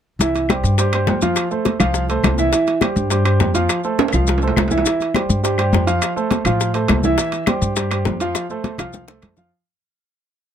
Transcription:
0.19 C2 E3 E4 E5, high bongo, high conga, high timbale, maracas
0.35 high bongo, high conga, high timbale, maracas
0.49 G3 G4 C5, high bongo, high conga, high timbale, low timbale, claves, maracas
0.63 G2, maracas
0.78 G3 G4 C5, high bongo, high conga, high timbale, maracas
0.93 G3 G4 C5, high bongo, high conga, high timbale, claves, maracas
1.07 F2, high bongo, low bongo, high conga, low timbale, maracas
1.22 F3 F4 F5, high bongo, high conga, high timbale, maracas
1.36 high bongo, high conga, high timbale, claves, maracas
1.51 A3 A4 C5, high conga, maracas
1.65 high bongo, high conga, high timbale, low timbale, maracas
1.79 C2 F3 F4 F5, high bongo, high timbale, claves, maracas
1.94 high bongo, high conga, maracas
2.09 A3 A4 C5, high bongo, high conga, high timbale, maracas
2.23 C2, high bongo, low bongo, high conga, high timbale, low timbale, claves, maracas
2.38 E3 E4 E5, high bongo, high conga, maracas
2.52 E3 E4 E5, high bongo, high conga, high timbale, maracas
2.67 high bongo, high conga, high timbale, maracas
2.81 G3 G4 C5, high bongo, high conga, high timbale, low timbale, claves, maracas
2.96 G2, maracas
3.10 G3 G4 C5, high bongo, high conga, high timbale, maracas
3.25 G3 G4 C5, high bongo, high conga, high timbale, claves, maracas
3.40 F2, high bongo, low bongo, high conga, low timbale, maracas
3.54 F3 F4 F5, high bongo, high conga, high timbale, maracas
3.69 high bongo, high conga, high timbale, claves, maracas
3.84 A3 A4 C5, high conga, maracas
3.99 high bongo, high conga, high timbale, maracas
4.08 high timbale
4.13 C2 F3 F4 F5, claves, maracas
4.27 high bongo, high conga, low timbale, maracas
4.38 high timbale
4.42 A3 A4 C5, high bongo, high conga, maracas
4.48 low timbale
4.56 C2, high bongo, low bongo, high conga, low timbale, claves, maracas
4.68 E3 E4 E5, high conga, low timbale, maracas
4.72 high bongo
4.78 low timbale
4.86 E3 E4 E5, high bongo, high conga, high timbale, maracas
5.00 high bongo, high conga, high timbale, maracas
5.14 G3 G4 C5, high bongo, high conga, high timbale, low timbale, claves, maracas
5.29 G2, maracas
5.43 G3 G4 C5, high bongo, high conga, high timbale, maracas
5.58 G3 G4 C5, high bongo, high conga, high timbale, claves, maracas
5.72 F2, high bongo, low bongo, high conga, low timbale, maracas
5.87 F3 F4 F5, high bongo, high timbale, maracas
6.02 high bongo, high conga, high timbale, claves, maracas
6.16 A3 A4 C5, high conga, maracas
6.31 high bongo, high conga, high timbale, low timbale, maracas
6.45 A2 F3 F4 F5, high bongo, high timbale, claves, maracas
6.60 high bongo, high conga, maracas
6.74 A3 A4 C5, high bongo, high conga, high timbale, maracas
6.88 C2, high bongo, low bongo, high conga, high timbale, low timbale, claves, maracas
7.03 E3 E4 E5, high bongo, high conga, maracas
7.18 E3 E4 E5, high bongo, high conga, high timbale, maracas
7.32 high bongo, high conga, high timbale, maracas
7.46 G3 G4 C5, high bongo, high conga, high timbale, low timbale, claves, maracas
7.61 G2, maracas
7.76 G3 G4 C5, high bongo, high conga, high timbale, maracas
7.91 G3 G4 C5, high bongo, high conga, high timbale, claves, maracas
8.05 F2, high bongo, low bongo, high conga, low timbale, maracas
8.20 F3 F4 F5, high bongo, high timbale, maracas
8.35 high bongo, high conga, high timbale, claves, maracas
8.50 A3 A4 C5, high conga, maracas
8.64 high conga, high timbale, low timbale, maracas
8.78 C2 F3 F4 F5, high bongo, high timbale, claves, maracas
8.93 low bongo, high conga, maracas
9.08 A3 A4 C5, low bongo, high timbale, maracas
9.22 F2, low bongo, high timbale, low timbale, claves, maracas
9.37 F3 F4 F5, low bongo, low conga, maracas

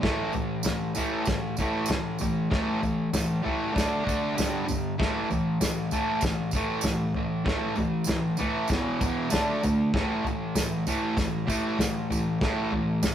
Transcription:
0.01 A2 E3 A3, kick, snare, floor tom
0.33 A2 E3, floor tom, tambourine
0.63 A2 E3, snare, floor tom, tambourine
0.95 A2 E3 A3, floor tom, tambourine
1.25 A2 E3, kick, snare, floor tom, tambourine
1.57 A2 E3, kick, floor tom, tambourine
1.61 A3
1.86 floor tom, tambourine
1.90 A2 E3, snare
2.19 A2 E3, floor tom, tambourine
2.50 A2 E3 A3, kick, snare, floor tom
2.82 A2 E3, floor tom, tambourine
3.13 A2 E3, snare, floor tom, tambourine
3.43 A2 E3 A3, floor tom
3.74 D3 A3 D4, kick, floor tom
3.78 snare, tambourine
4.05 D3 A3 D4, kick, floor tom
4.09 tambourine
4.35 G2 D3 G3, floor tom, tambourine
4.40 snare
4.65 G2 D3, tambourine
4.70 floor tom
4.98 A2 E3 A3, kick, snare, floor tom
5.29 A2 E3, floor tom, tambourine
5.61 A2 E3, snare, floor tom, tambourine
5.91 A2 E3 A3, floor tom, tambourine
6.21 A2 E3, kick, snare, floor tom, tambourine
6.51 A2 E3, kick, floor tom, tambourine
6.56 A3
6.81 A2 E3, snare, floor tom, tambourine
7.15 A2 E3, floor tom
7.45 A2 E3 A3, kick, snare, floor tom
7.76 A2 E3, floor tom, tambourine
8.04 A2, floor tom, tambourine
8.08 E3, snare
8.37 A2 E3 A3, floor tom, tambourine
8.68 E2 B2 E3, kick, floor tom, tambourine
8.72 snare
9.00 E2 B2 E3, kick, floor tom, tambourine
9.30 D3 A3 D4, snare, floor tom, tambourine
9.63 D3 A3, floor tom, tambourine
9.94 A2 E3 A3, kick, snare, floor tom
10.24 A2 E3, floor tom, tambourine
10.55 A2 E3, snare, floor tom, tambourine
10.87 A2 E3 A3, floor tom, tambourine
11.17 A2 E3, kick, snare, floor tom, tambourine
11.47 A2 E3 A3, kick, floor tom, tambourine
11.79 A2 E3, snare, floor tom, tambourine
12.10 A2 E3, floor tom, tambourine
12.41 A2 E3 A3, kick, snare, floor tom, tambourine
12.72 A2 E3, floor tom
13.03 A2 E3, snare, floor tom, tambourine

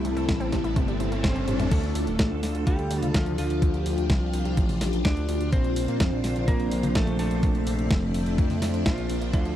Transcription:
Already playing: G3 A3 C4 E4 A4, riser
0.05 C2 C3, closed hi-hat
0.17 C2 A3, closed hi-hat
0.28 A1 C3, kick, snare, closed hi-hat
0.40 A1 C4, closed hi-hat
0.52 A1 C3, kick, snare, closed hi-hat
0.64 A1 E4, closed hi-hat
0.76 G1 C3, kick, closed hi-hat
0.88 G1 G3, closed hi-hat
1.00 G1 C3, closed hi-hat
1.12 G1 A3, closed hi-hat
1.24 G1 C3 C4 C5, kick, snare, closed hi-hat
1.36 G1 G4, closed hi-hat, high tom
1.48 G1 C3, closed hi-hat, mid tom
1.59 G1 E4, closed hi-hat, mid tom
1.71 D2 A3 D4 F4 A4, kick, closed hi-hat, crash
1.83 D2, closed hi-hat
1.95 D2, open hi-hat
2.07 D1, closed hi-hat
2.19 A1, kick, snare, closed hi-hat
2.31 D2
2.43 D2, snare, open hi-hat
2.55 D2, closed hi-hat
2.67 D2 G3 G4, kick, closed hi-hat
2.79 D2, closed hi-hat
2.91 D2, open hi-hat
3.03 D2, closed hi-hat, high tom
3.14 D2 F3 F4, kick, snare, closed hi-hat
3.26 D2, closed hi-hat, high tom
3.38 D2 F3 F4, open hi-hat
3.50 D2, closed hi-hat
3.62 D2 G4, kick, closed hi-hat
3.74 D2, closed hi-hat
3.86 D2, open hi-hat
3.98 D2, closed hi-hat
4.10 C2, kick, snare, closed hi-hat, high tom
4.22 C2
4.33 C2, open hi-hat
4.45 C2, closed hi-hat
4.57 A1, kick, closed hi-hat
4.69 A1, open hi-hat, high tom
4.81 A1, snare, open hi-hat
4.93 A1, closed hi-hat
5.05 D2 D4 D5, kick, snare, closed hi-hat
5.17 D2, closed hi-hat
5.29 D2, open hi-hat
5.41 D2, closed hi-hat
5.52 A#1 F3 C4 C5, kick, closed hi-hat
5.64 A#1, closed hi-hat
5.76 A#1, open hi-hat
5.88 A#2, closed hi-hat
6.00 F2, kick, snare, closed hi-hat
6.12 A#1
6.24 A#1, snare, open hi-hat
6.36 A#1, closed hi-hat
6.48 A#1 A#3 A#4, kick, closed hi-hat
6.60 A#1, closed hi-hat
6.71 A#1, open hi-hat
6.83 A#1, closed hi-hat, high tom
6.95 A#1 A3 A4, kick, snare, closed hi-hat
7.07 A#1, closed hi-hat, high tom
7.19 A#1 A3 A4, open hi-hat
7.31 A#1, closed hi-hat
7.43 A#1 E5, kick, closed hi-hat
7.55 A#1, closed hi-hat
7.67 A#1, open hi-hat
7.79 A#1, closed hi-hat
7.91 F1, kick, snare, closed hi-hat, high tom
8.02 F1
8.14 F1, open hi-hat
8.26 F1, closed hi-hat
8.38 F2, kick, closed hi-hat
8.50 F2, open hi-hat, high tom
8.62 F2, snare, open hi-hat
8.74 F2, closed hi-hat
8.86 A#1 F3 F4, kick, snare, closed hi-hat
8.98 A#1, closed hi-hat
9.10 A#1, open hi-hat
9.21 A#1, closed hi-hat
9.33 D2 F3 F4 A4, kick, closed hi-hat
9.45 D2, closed hi-hat

